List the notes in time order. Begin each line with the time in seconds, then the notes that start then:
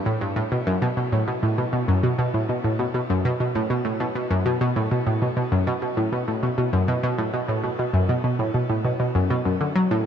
0.06 A2
0.21 G2
0.36 A2
0.52 B2
0.67 F#2
0.82 B2
0.97 B2
1.12 A2
1.28 B2
1.43 A2
1.58 B2
1.73 B2
1.88 F#2
2.03 B2
2.19 B2
2.34 A2
2.49 B2
2.64 A2
2.79 B2
2.94 B2
3.10 F#2
3.25 B2
3.40 B2
3.55 A2
3.70 B2
3.85 A2
4.00 B2
4.15 B2
4.30 F#2
4.46 B2
4.61 B2
4.76 A2
4.91 B2
5.07 A2
5.22 B2
5.37 B2
5.52 F#2
5.67 B2
5.82 B2
5.97 A2
6.12 B2
6.28 A2
6.43 B2
6.58 B2
6.73 F#2
6.88 B2
7.03 B2
7.18 A2
7.34 B2
7.49 A2
7.64 B2
7.79 B2
7.94 F#2
8.09 B2
8.24 B2
8.39 A2
8.54 B2
8.69 A2
8.85 B2
9.00 B2
9.15 F#2
9.30 B2
9.45 F#2
9.61 D3
9.75 F#3
9.91 A2